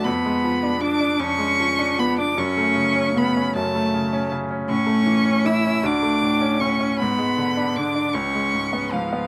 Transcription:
X:1
M:6/8
L:1/16
Q:3/8=52
K:F#m
V:1 name="Violin"
_c'4 d'2 ^c'4 _c' d' | c'4 b2 a4 z2 | c'4 e'2 d'4 c'2 | b4 d'2 c'4 ^e2 |]
V:2 name="Cello"
_C4 D2 ^C4 _C D | C4 B,2 A,4 z2 | C4 E2 D4 C2 | B,4 D2 C4 ^E,2 |]
V:3 name="Grand piano" clef=bass
=F,, _A, =F, D F, D F,, A, F, D F, D | F,, A, C, C C, C F,, A, C, C C, C | A,, A, E, C E, C D,, A, A,, C A,, C | G,, G, D, D D, D C,, G, G,, B, G,, B, |]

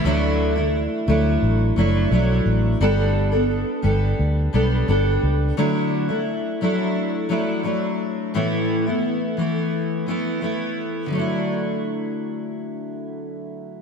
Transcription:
X:1
M:4/4
L:1/16
Q:1/4=87
K:D
V:1 name="Steel-string acoustic guitar"
[D,F,A,DE]3 [A,DE]3 [F,A,DE]4 [F,A,DE]2 [F,A,DE]4 | [G,B,DA]3 [B,DA]3 [G,B,DA]4 [G,B,DA]2 [G,B,DA]4 | [D,F,A,DE]3 [A,DE]3 [F,A,DE]4 [F,A,DE]2 [F,A,DE]4 | [A,,E,A,B,E]3 [A,B,E]3 [E,A,B,E]4 [E,A,B,E]2 [E,A,B,E]4 |
[D,F,A,DE]16 |]
V:2 name="Fingered electric bass" clef=bass
D,,4- D,, z D,,2 A,,,2 F,,,2 B,,,2 A,,,2 | G,,,4- G,,, z G,,,2 D,,2 B,,,2 G,,,2 C,,2 | z16 | z16 |
z16 |]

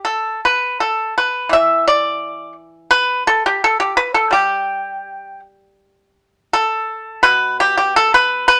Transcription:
X:1
M:2/4
L:1/16
Q:1/4=84
K:none
V:1 name="Pipa"
A2 B2 A2 B2 | e2 d4 z2 | B2 A G A G B A | G6 z2 |
z4 A4 | B2 G G A B2 B |]
V:2 name="Pipa" clef=bass
z8 | E,8- | E,4 z4 | G,8- |
G,4 z4 | B,,8 |]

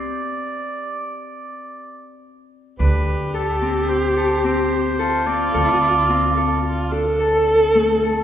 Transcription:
X:1
M:5/4
L:1/8
Q:1/4=109
K:Dm
V:1 name="Oboe"
d8 z2 | =B2 A2 c2 c3 d- | d4- d z4 z |]
V:2 name="Viola"
z8 z2 | G8 F2- | F4 F A4- A |]
V:3 name="Harp"
z8 z2 | D2 A C2 A C2 A C | A2 C A2 D A2 A, A |]
V:4 name="Upright bass" clef=bass
z8 z2 | D,,8- D,,2 | D,,8- D,,2 |]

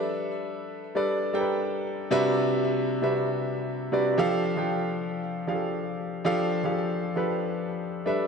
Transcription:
X:1
M:4/4
L:1/16
Q:1/4=116
K:Flyd
V:1 name="Grand piano"
[G,DABe]4 z3 [G,DABd]2 z [G,DA_B=Bg]4- [G,DA_B=Bg] z | [C,G,D^FBe]6 z [C,G,DFBe]6 z [C,G,DFBd]2 | [F,DGAf]2 z [F,DGAg]6 z [F,DG_A=Af]4- [F,DG_A=Af] z | [F,DGAf]2 z [F,DG_A=Af]3 z [F,DGAB]6 z [G,DABe]2 |]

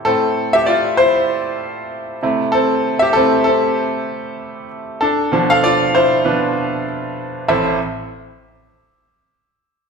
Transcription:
X:1
M:4/4
L:1/16
Q:"Swing 16ths" 1/4=97
K:Am
V:1 name="Grand piano"
A3 [Ge] [Fd]2 [Ec]8 z2 | [CA]3 [Ge] [CA]2 [CA]8 z2 | [DA]3 [Af] [Fd]2 [Ec]2 B4 z4 | [CEAe]2 z12 z2 |]
V:2 name="Grand piano" clef=bass
[A,,A,C]2 z12 [C,A,E]2 | z4 [C,A,E]2 z8 z2 | z2 [B,,F,D]6 [B,,F,D]2 z6 | A,,,2 z12 z2 |]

